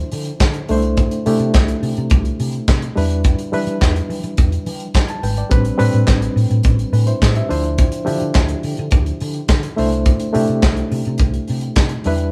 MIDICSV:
0, 0, Header, 1, 4, 480
1, 0, Start_track
1, 0, Key_signature, 0, "major"
1, 0, Tempo, 568182
1, 820, Time_signature, 4, 2, 24, 8
1, 10405, End_track
2, 0, Start_track
2, 0, Title_t, "Reed electric piano"
2, 0, Program_c, 0, 4
2, 0, Control_c, 0, 64, 127
2, 0, Note_on_c, 0, 53, 83
2, 0, Note_on_c, 0, 62, 74
2, 0, Note_on_c, 0, 64, 74
2, 0, Note_on_c, 0, 72, 92
2, 584, Note_on_c, 0, 57, 92
2, 591, Control_c, 0, 64, 0
2, 594, Note_off_c, 0, 53, 0
2, 594, Note_off_c, 0, 62, 0
2, 594, Note_on_c, 0, 62, 76
2, 594, Note_on_c, 0, 63, 58
2, 595, Note_off_c, 0, 72, 0
2, 597, Note_off_c, 0, 64, 0
2, 602, Note_on_c, 0, 72, 94
2, 643, Note_off_c, 0, 63, 0
2, 652, Note_on_c, 0, 64, 73
2, 722, Control_c, 0, 64, 127
2, 974, Note_off_c, 0, 57, 0
2, 979, Note_off_c, 0, 62, 0
2, 983, Note_off_c, 0, 72, 0
2, 1008, Note_off_c, 0, 64, 0
2, 1063, Note_on_c, 0, 57, 91
2, 1067, Note_on_c, 0, 62, 75
2, 1074, Note_on_c, 0, 67, 86
2, 1076, Note_on_c, 0, 64, 74
2, 1845, Note_off_c, 0, 57, 0
2, 1847, Note_off_c, 0, 62, 0
2, 1850, Note_off_c, 0, 67, 0
2, 1852, Note_off_c, 0, 64, 0
2, 2496, Note_on_c, 0, 55, 89
2, 2500, Note_on_c, 0, 62, 85
2, 2508, Note_on_c, 0, 64, 68
2, 2511, Control_c, 0, 64, 0
2, 2513, Note_on_c, 0, 71, 91
2, 2683, Control_c, 0, 64, 127
2, 2889, Note_off_c, 0, 55, 0
2, 2891, Note_off_c, 0, 62, 0
2, 2895, Note_off_c, 0, 64, 0
2, 2898, Note_off_c, 0, 71, 0
2, 2973, Note_on_c, 0, 55, 74
2, 2980, Note_on_c, 0, 62, 69
2, 2981, Note_on_c, 0, 64, 76
2, 2989, Note_on_c, 0, 71, 89
2, 3760, Note_off_c, 0, 55, 0
2, 3763, Note_off_c, 0, 62, 0
2, 3764, Note_off_c, 0, 64, 0
2, 3768, Note_off_c, 0, 71, 0
2, 4305, Note_on_c, 0, 81, 65
2, 4416, Note_off_c, 0, 81, 0
2, 4422, Note_on_c, 0, 79, 64
2, 4423, Note_on_c, 0, 71, 55
2, 4534, Note_off_c, 0, 71, 0
2, 4534, Note_off_c, 0, 79, 0
2, 4544, Note_on_c, 0, 74, 62
2, 4641, Note_on_c, 0, 55, 78
2, 4648, Note_on_c, 0, 60, 77
2, 4651, Note_on_c, 0, 62, 70
2, 4657, Note_on_c, 0, 71, 82
2, 4667, Control_c, 0, 64, 0
2, 4769, Note_off_c, 0, 74, 0
2, 4838, Control_c, 0, 64, 127
2, 4845, Note_off_c, 0, 55, 0
2, 4849, Note_off_c, 0, 60, 0
2, 4850, Note_off_c, 0, 62, 0
2, 4854, Note_off_c, 0, 71, 0
2, 4877, Note_on_c, 0, 55, 75
2, 4879, Note_on_c, 0, 60, 74
2, 4886, Note_on_c, 0, 62, 74
2, 4890, Note_on_c, 0, 71, 93
2, 5671, Note_off_c, 0, 55, 0
2, 5673, Note_off_c, 0, 60, 0
2, 5676, Note_off_c, 0, 62, 0
2, 5678, Note_off_c, 0, 71, 0
2, 5855, Note_on_c, 0, 71, 63
2, 5861, Note_on_c, 0, 62, 47
2, 5971, Note_off_c, 0, 71, 0
2, 5972, Note_on_c, 0, 72, 71
2, 5974, Note_off_c, 0, 62, 0
2, 5977, Note_on_c, 0, 64, 58
2, 6203, Note_off_c, 0, 72, 0
2, 6206, Note_off_c, 0, 64, 0
2, 6217, Note_on_c, 0, 67, 54
2, 6218, Note_on_c, 0, 76, 61
2, 6329, Note_on_c, 0, 53, 83
2, 6330, Note_on_c, 0, 62, 79
2, 6339, Note_on_c, 0, 64, 76
2, 6339, Note_on_c, 0, 72, 91
2, 6349, Control_c, 0, 64, 0
2, 6445, Note_off_c, 0, 67, 0
2, 6446, Note_off_c, 0, 76, 0
2, 6499, Control_c, 0, 64, 127
2, 6726, Note_off_c, 0, 53, 0
2, 6726, Note_off_c, 0, 62, 0
2, 6731, Note_off_c, 0, 64, 0
2, 6731, Note_off_c, 0, 72, 0
2, 6797, Note_on_c, 0, 53, 76
2, 6805, Note_on_c, 0, 62, 78
2, 6809, Note_on_c, 0, 64, 72
2, 6811, Note_on_c, 0, 67, 88
2, 7592, Note_off_c, 0, 53, 0
2, 7596, Note_off_c, 0, 62, 0
2, 7598, Note_off_c, 0, 64, 0
2, 7599, Note_off_c, 0, 67, 0
2, 8249, Note_on_c, 0, 57, 88
2, 8256, Note_on_c, 0, 64, 85
2, 8258, Note_on_c, 0, 62, 81
2, 8269, Control_c, 0, 64, 0
2, 8269, Note_on_c, 0, 72, 94
2, 8443, Control_c, 0, 64, 127
2, 8646, Note_off_c, 0, 57, 0
2, 8650, Note_off_c, 0, 64, 0
2, 8651, Note_off_c, 0, 62, 0
2, 8656, Note_off_c, 0, 72, 0
2, 8726, Note_on_c, 0, 57, 80
2, 8731, Note_on_c, 0, 62, 81
2, 8736, Note_on_c, 0, 64, 74
2, 8737, Note_on_c, 0, 67, 92
2, 9518, Note_off_c, 0, 57, 0
2, 9520, Note_off_c, 0, 62, 0
2, 9523, Note_off_c, 0, 64, 0
2, 9523, Note_off_c, 0, 67, 0
2, 10181, Note_on_c, 0, 55, 80
2, 10187, Note_on_c, 0, 62, 75
2, 10191, Control_c, 0, 64, 0
2, 10193, Note_on_c, 0, 64, 77
2, 10198, Note_on_c, 0, 71, 98
2, 10323, Control_c, 0, 64, 127
2, 10405, Note_off_c, 0, 55, 0
2, 10405, Note_off_c, 0, 62, 0
2, 10405, Note_off_c, 0, 64, 0
2, 10405, Note_off_c, 0, 71, 0
2, 10405, End_track
3, 0, Start_track
3, 0, Title_t, "Fingered electric bass"
3, 0, Program_c, 1, 33
3, 108, Note_on_c, 1, 50, 87
3, 259, Note_off_c, 1, 50, 0
3, 343, Note_on_c, 1, 50, 91
3, 496, Note_off_c, 1, 50, 0
3, 589, Note_on_c, 1, 36, 86
3, 893, Note_off_c, 1, 36, 0
3, 1068, Note_on_c, 1, 48, 99
3, 1142, Note_off_c, 1, 48, 0
3, 1181, Note_on_c, 1, 48, 81
3, 1257, Note_off_c, 1, 48, 0
3, 1307, Note_on_c, 1, 36, 84
3, 1458, Note_off_c, 1, 36, 0
3, 1540, Note_on_c, 1, 48, 93
3, 1617, Note_off_c, 1, 48, 0
3, 1670, Note_on_c, 1, 48, 91
3, 1743, Note_off_c, 1, 48, 0
3, 1783, Note_on_c, 1, 36, 100
3, 1936, Note_off_c, 1, 36, 0
3, 2025, Note_on_c, 1, 48, 93
3, 2177, Note_off_c, 1, 48, 0
3, 2267, Note_on_c, 1, 48, 81
3, 2418, Note_off_c, 1, 48, 0
3, 2510, Note_on_c, 1, 40, 100
3, 2814, Note_off_c, 1, 40, 0
3, 2985, Note_on_c, 1, 52, 97
3, 3060, Note_off_c, 1, 52, 0
3, 3100, Note_on_c, 1, 52, 82
3, 3177, Note_off_c, 1, 52, 0
3, 3225, Note_on_c, 1, 40, 106
3, 3377, Note_off_c, 1, 40, 0
3, 3459, Note_on_c, 1, 52, 93
3, 3536, Note_off_c, 1, 52, 0
3, 3580, Note_on_c, 1, 52, 86
3, 3656, Note_off_c, 1, 52, 0
3, 3703, Note_on_c, 1, 40, 99
3, 3855, Note_off_c, 1, 40, 0
3, 3941, Note_on_c, 1, 52, 86
3, 4094, Note_off_c, 1, 52, 0
3, 4182, Note_on_c, 1, 52, 84
3, 4334, Note_off_c, 1, 52, 0
3, 4418, Note_on_c, 1, 32, 97
3, 4572, Note_off_c, 1, 32, 0
3, 4657, Note_on_c, 1, 33, 100
3, 4811, Note_off_c, 1, 33, 0
3, 4898, Note_on_c, 1, 45, 88
3, 4974, Note_off_c, 1, 45, 0
3, 5017, Note_on_c, 1, 45, 81
3, 5094, Note_off_c, 1, 45, 0
3, 5139, Note_on_c, 1, 33, 97
3, 5292, Note_off_c, 1, 33, 0
3, 5371, Note_on_c, 1, 45, 97
3, 5450, Note_off_c, 1, 45, 0
3, 5495, Note_on_c, 1, 45, 84
3, 5573, Note_off_c, 1, 45, 0
3, 5616, Note_on_c, 1, 33, 105
3, 5770, Note_off_c, 1, 33, 0
3, 5851, Note_on_c, 1, 45, 98
3, 6007, Note_off_c, 1, 45, 0
3, 6101, Note_on_c, 1, 45, 79
3, 6254, Note_off_c, 1, 45, 0
3, 6341, Note_on_c, 1, 38, 105
3, 6648, Note_off_c, 1, 38, 0
3, 6822, Note_on_c, 1, 50, 98
3, 6897, Note_off_c, 1, 50, 0
3, 6940, Note_on_c, 1, 50, 83
3, 7016, Note_off_c, 1, 50, 0
3, 7057, Note_on_c, 1, 38, 100
3, 7211, Note_off_c, 1, 38, 0
3, 7301, Note_on_c, 1, 50, 87
3, 7377, Note_off_c, 1, 50, 0
3, 7425, Note_on_c, 1, 50, 95
3, 7500, Note_off_c, 1, 50, 0
3, 7538, Note_on_c, 1, 38, 102
3, 7692, Note_off_c, 1, 38, 0
3, 7784, Note_on_c, 1, 50, 89
3, 7936, Note_off_c, 1, 50, 0
3, 8015, Note_on_c, 1, 50, 93
3, 8170, Note_off_c, 1, 50, 0
3, 8268, Note_on_c, 1, 36, 100
3, 8573, Note_off_c, 1, 36, 0
3, 8746, Note_on_c, 1, 48, 110
3, 8821, Note_off_c, 1, 48, 0
3, 8863, Note_on_c, 1, 48, 80
3, 8939, Note_off_c, 1, 48, 0
3, 8979, Note_on_c, 1, 36, 94
3, 9133, Note_off_c, 1, 36, 0
3, 9221, Note_on_c, 1, 48, 90
3, 9298, Note_off_c, 1, 48, 0
3, 9349, Note_on_c, 1, 48, 95
3, 9423, Note_off_c, 1, 48, 0
3, 9457, Note_on_c, 1, 36, 102
3, 9612, Note_off_c, 1, 36, 0
3, 9710, Note_on_c, 1, 48, 94
3, 9861, Note_off_c, 1, 48, 0
3, 9939, Note_on_c, 1, 48, 87
3, 10094, Note_off_c, 1, 48, 0
3, 10186, Note_on_c, 1, 40, 87
3, 10405, Note_off_c, 1, 40, 0
3, 10405, End_track
4, 0, Start_track
4, 0, Title_t, "Drums"
4, 98, Note_on_c, 9, 46, 69
4, 182, Note_off_c, 9, 46, 0
4, 210, Note_on_c, 9, 42, 46
4, 295, Note_off_c, 9, 42, 0
4, 337, Note_on_c, 9, 42, 53
4, 341, Note_on_c, 9, 36, 103
4, 345, Note_on_c, 9, 38, 100
4, 349, Note_on_c, 9, 39, 79
4, 421, Note_off_c, 9, 42, 0
4, 426, Note_off_c, 9, 36, 0
4, 429, Note_off_c, 9, 38, 0
4, 433, Note_off_c, 9, 39, 0
4, 453, Note_on_c, 9, 42, 45
4, 537, Note_off_c, 9, 42, 0
4, 579, Note_on_c, 9, 46, 64
4, 664, Note_off_c, 9, 46, 0
4, 697, Note_on_c, 9, 42, 39
4, 781, Note_off_c, 9, 42, 0
4, 819, Note_on_c, 9, 42, 53
4, 824, Note_on_c, 9, 36, 99
4, 903, Note_off_c, 9, 42, 0
4, 908, Note_off_c, 9, 36, 0
4, 940, Note_on_c, 9, 42, 54
4, 1025, Note_off_c, 9, 42, 0
4, 1064, Note_on_c, 9, 46, 67
4, 1149, Note_off_c, 9, 46, 0
4, 1175, Note_on_c, 9, 42, 43
4, 1259, Note_off_c, 9, 42, 0
4, 1299, Note_on_c, 9, 42, 60
4, 1304, Note_on_c, 9, 38, 98
4, 1305, Note_on_c, 9, 36, 115
4, 1308, Note_on_c, 9, 39, 73
4, 1383, Note_off_c, 9, 42, 0
4, 1388, Note_off_c, 9, 38, 0
4, 1390, Note_off_c, 9, 36, 0
4, 1392, Note_off_c, 9, 39, 0
4, 1422, Note_on_c, 9, 42, 51
4, 1506, Note_off_c, 9, 42, 0
4, 1545, Note_on_c, 9, 46, 61
4, 1630, Note_off_c, 9, 46, 0
4, 1664, Note_on_c, 9, 42, 39
4, 1748, Note_off_c, 9, 42, 0
4, 1773, Note_on_c, 9, 42, 66
4, 1783, Note_on_c, 9, 36, 104
4, 1857, Note_off_c, 9, 42, 0
4, 1868, Note_off_c, 9, 36, 0
4, 1900, Note_on_c, 9, 42, 37
4, 1985, Note_off_c, 9, 42, 0
4, 2024, Note_on_c, 9, 46, 67
4, 2108, Note_off_c, 9, 46, 0
4, 2137, Note_on_c, 9, 42, 41
4, 2221, Note_off_c, 9, 42, 0
4, 2262, Note_on_c, 9, 42, 59
4, 2264, Note_on_c, 9, 36, 107
4, 2270, Note_on_c, 9, 38, 95
4, 2274, Note_on_c, 9, 39, 77
4, 2346, Note_off_c, 9, 42, 0
4, 2348, Note_off_c, 9, 36, 0
4, 2355, Note_off_c, 9, 38, 0
4, 2359, Note_off_c, 9, 39, 0
4, 2384, Note_on_c, 9, 42, 45
4, 2468, Note_off_c, 9, 42, 0
4, 2509, Note_on_c, 9, 46, 71
4, 2594, Note_off_c, 9, 46, 0
4, 2620, Note_on_c, 9, 42, 39
4, 2704, Note_off_c, 9, 42, 0
4, 2738, Note_on_c, 9, 42, 62
4, 2743, Note_on_c, 9, 36, 100
4, 2823, Note_off_c, 9, 42, 0
4, 2827, Note_off_c, 9, 36, 0
4, 2860, Note_on_c, 9, 42, 51
4, 2945, Note_off_c, 9, 42, 0
4, 2983, Note_on_c, 9, 46, 60
4, 3067, Note_off_c, 9, 46, 0
4, 3098, Note_on_c, 9, 42, 40
4, 3183, Note_off_c, 9, 42, 0
4, 3219, Note_on_c, 9, 42, 57
4, 3224, Note_on_c, 9, 36, 97
4, 3224, Note_on_c, 9, 38, 96
4, 3228, Note_on_c, 9, 39, 70
4, 3303, Note_off_c, 9, 42, 0
4, 3308, Note_off_c, 9, 36, 0
4, 3309, Note_off_c, 9, 38, 0
4, 3313, Note_off_c, 9, 39, 0
4, 3344, Note_on_c, 9, 42, 46
4, 3428, Note_off_c, 9, 42, 0
4, 3465, Note_on_c, 9, 46, 55
4, 3549, Note_off_c, 9, 46, 0
4, 3577, Note_on_c, 9, 42, 44
4, 3662, Note_off_c, 9, 42, 0
4, 3694, Note_on_c, 9, 42, 60
4, 3701, Note_on_c, 9, 36, 104
4, 3779, Note_off_c, 9, 42, 0
4, 3786, Note_off_c, 9, 36, 0
4, 3820, Note_on_c, 9, 42, 36
4, 3905, Note_off_c, 9, 42, 0
4, 3940, Note_on_c, 9, 46, 66
4, 4024, Note_off_c, 9, 46, 0
4, 4056, Note_on_c, 9, 42, 46
4, 4140, Note_off_c, 9, 42, 0
4, 4176, Note_on_c, 9, 42, 62
4, 4179, Note_on_c, 9, 36, 101
4, 4184, Note_on_c, 9, 38, 94
4, 4188, Note_on_c, 9, 39, 80
4, 4260, Note_off_c, 9, 42, 0
4, 4263, Note_off_c, 9, 36, 0
4, 4268, Note_off_c, 9, 38, 0
4, 4272, Note_off_c, 9, 39, 0
4, 4294, Note_on_c, 9, 42, 48
4, 4379, Note_off_c, 9, 42, 0
4, 4421, Note_on_c, 9, 46, 64
4, 4506, Note_off_c, 9, 46, 0
4, 4537, Note_on_c, 9, 42, 44
4, 4621, Note_off_c, 9, 42, 0
4, 4653, Note_on_c, 9, 42, 60
4, 4658, Note_on_c, 9, 36, 100
4, 4738, Note_off_c, 9, 42, 0
4, 4743, Note_off_c, 9, 36, 0
4, 4770, Note_on_c, 9, 42, 51
4, 4855, Note_off_c, 9, 42, 0
4, 4894, Note_on_c, 9, 46, 68
4, 4978, Note_off_c, 9, 46, 0
4, 5006, Note_on_c, 9, 42, 40
4, 5091, Note_off_c, 9, 42, 0
4, 5126, Note_on_c, 9, 42, 56
4, 5131, Note_on_c, 9, 38, 88
4, 5135, Note_on_c, 9, 39, 79
4, 5137, Note_on_c, 9, 36, 94
4, 5211, Note_off_c, 9, 42, 0
4, 5216, Note_off_c, 9, 38, 0
4, 5220, Note_off_c, 9, 39, 0
4, 5222, Note_off_c, 9, 36, 0
4, 5255, Note_on_c, 9, 42, 51
4, 5340, Note_off_c, 9, 42, 0
4, 5384, Note_on_c, 9, 46, 53
4, 5468, Note_off_c, 9, 46, 0
4, 5496, Note_on_c, 9, 42, 40
4, 5581, Note_off_c, 9, 42, 0
4, 5604, Note_on_c, 9, 42, 66
4, 5616, Note_on_c, 9, 36, 97
4, 5689, Note_off_c, 9, 42, 0
4, 5701, Note_off_c, 9, 36, 0
4, 5736, Note_on_c, 9, 42, 37
4, 5821, Note_off_c, 9, 42, 0
4, 5858, Note_on_c, 9, 46, 67
4, 5942, Note_off_c, 9, 46, 0
4, 5971, Note_on_c, 9, 42, 44
4, 6056, Note_off_c, 9, 42, 0
4, 6097, Note_on_c, 9, 42, 66
4, 6098, Note_on_c, 9, 36, 93
4, 6105, Note_on_c, 9, 38, 107
4, 6109, Note_on_c, 9, 39, 78
4, 6181, Note_off_c, 9, 42, 0
4, 6182, Note_off_c, 9, 36, 0
4, 6190, Note_off_c, 9, 38, 0
4, 6194, Note_off_c, 9, 39, 0
4, 6211, Note_on_c, 9, 42, 45
4, 6296, Note_off_c, 9, 42, 0
4, 6340, Note_on_c, 9, 46, 64
4, 6425, Note_off_c, 9, 46, 0
4, 6450, Note_on_c, 9, 42, 45
4, 6535, Note_off_c, 9, 42, 0
4, 6573, Note_on_c, 9, 42, 62
4, 6577, Note_on_c, 9, 36, 104
4, 6658, Note_off_c, 9, 42, 0
4, 6661, Note_off_c, 9, 36, 0
4, 6689, Note_on_c, 9, 42, 52
4, 6773, Note_off_c, 9, 42, 0
4, 6815, Note_on_c, 9, 46, 59
4, 6900, Note_off_c, 9, 46, 0
4, 6926, Note_on_c, 9, 42, 43
4, 7010, Note_off_c, 9, 42, 0
4, 7047, Note_on_c, 9, 42, 58
4, 7052, Note_on_c, 9, 38, 80
4, 7056, Note_on_c, 9, 36, 102
4, 7056, Note_on_c, 9, 39, 79
4, 7131, Note_off_c, 9, 42, 0
4, 7137, Note_off_c, 9, 38, 0
4, 7140, Note_off_c, 9, 36, 0
4, 7141, Note_off_c, 9, 39, 0
4, 7168, Note_on_c, 9, 42, 47
4, 7252, Note_off_c, 9, 42, 0
4, 7293, Note_on_c, 9, 46, 59
4, 7378, Note_off_c, 9, 46, 0
4, 7410, Note_on_c, 9, 42, 40
4, 7495, Note_off_c, 9, 42, 0
4, 7525, Note_on_c, 9, 42, 65
4, 7536, Note_on_c, 9, 36, 105
4, 7609, Note_off_c, 9, 42, 0
4, 7620, Note_off_c, 9, 36, 0
4, 7656, Note_on_c, 9, 42, 38
4, 7740, Note_off_c, 9, 42, 0
4, 7776, Note_on_c, 9, 46, 57
4, 7860, Note_off_c, 9, 46, 0
4, 7887, Note_on_c, 9, 42, 42
4, 7971, Note_off_c, 9, 42, 0
4, 8011, Note_on_c, 9, 42, 61
4, 8016, Note_on_c, 9, 36, 106
4, 8019, Note_on_c, 9, 38, 104
4, 8023, Note_on_c, 9, 39, 86
4, 8095, Note_off_c, 9, 42, 0
4, 8100, Note_off_c, 9, 36, 0
4, 8104, Note_off_c, 9, 38, 0
4, 8108, Note_off_c, 9, 39, 0
4, 8135, Note_on_c, 9, 42, 45
4, 8220, Note_off_c, 9, 42, 0
4, 8263, Note_on_c, 9, 46, 74
4, 8347, Note_off_c, 9, 46, 0
4, 8380, Note_on_c, 9, 42, 37
4, 8465, Note_off_c, 9, 42, 0
4, 8495, Note_on_c, 9, 42, 65
4, 8498, Note_on_c, 9, 36, 98
4, 8580, Note_off_c, 9, 42, 0
4, 8583, Note_off_c, 9, 36, 0
4, 8614, Note_on_c, 9, 42, 54
4, 8698, Note_off_c, 9, 42, 0
4, 8740, Note_on_c, 9, 46, 68
4, 8824, Note_off_c, 9, 46, 0
4, 8847, Note_on_c, 9, 42, 41
4, 8932, Note_off_c, 9, 42, 0
4, 8973, Note_on_c, 9, 42, 57
4, 8978, Note_on_c, 9, 38, 102
4, 8980, Note_on_c, 9, 36, 111
4, 8982, Note_on_c, 9, 39, 76
4, 9058, Note_off_c, 9, 42, 0
4, 9063, Note_off_c, 9, 38, 0
4, 9064, Note_off_c, 9, 36, 0
4, 9067, Note_off_c, 9, 39, 0
4, 9096, Note_on_c, 9, 42, 46
4, 9181, Note_off_c, 9, 42, 0
4, 9221, Note_on_c, 9, 46, 56
4, 9306, Note_off_c, 9, 46, 0
4, 9337, Note_on_c, 9, 42, 39
4, 9422, Note_off_c, 9, 42, 0
4, 9443, Note_on_c, 9, 42, 69
4, 9458, Note_on_c, 9, 36, 101
4, 9528, Note_off_c, 9, 42, 0
4, 9542, Note_off_c, 9, 36, 0
4, 9577, Note_on_c, 9, 42, 39
4, 9661, Note_off_c, 9, 42, 0
4, 9694, Note_on_c, 9, 46, 67
4, 9779, Note_off_c, 9, 46, 0
4, 9809, Note_on_c, 9, 42, 43
4, 9893, Note_off_c, 9, 42, 0
4, 9932, Note_on_c, 9, 42, 64
4, 9938, Note_on_c, 9, 36, 109
4, 9940, Note_on_c, 9, 38, 108
4, 9944, Note_on_c, 9, 39, 83
4, 10016, Note_off_c, 9, 42, 0
4, 10022, Note_off_c, 9, 36, 0
4, 10024, Note_off_c, 9, 38, 0
4, 10028, Note_off_c, 9, 39, 0
4, 10044, Note_on_c, 9, 42, 47
4, 10128, Note_off_c, 9, 42, 0
4, 10173, Note_on_c, 9, 46, 71
4, 10257, Note_off_c, 9, 46, 0
4, 10288, Note_on_c, 9, 42, 41
4, 10373, Note_off_c, 9, 42, 0
4, 10405, End_track
0, 0, End_of_file